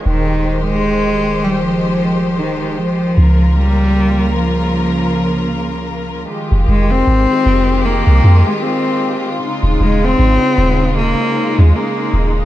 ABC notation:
X:1
M:4/4
L:1/16
Q:"Swing 16ths" 1/4=77
K:Fm
V:1 name="String section"
[E,A,Gc]16 | [D,B,FB]16 | [E,A,FG]16 | [D,A,E]16 |]
V:2 name="Cello" clef=bass
E,3 A,4 G, F,4 E,2 F,2- | F,2 G,4 F,8 z2 | z2 A, C4- C B,3 A, C3 z | z2 A, C4- C B,3 A, B,3 z |]
V:3 name="808-style bass" clef=bass
E,,,16 | D,,16 | z F,,, F,,,2 A,,, z F,,,3 C,, F,, z4 z | z E,,, E,,,2 A,,, z E,,,3 z2 E,, z2 E,,,2 |]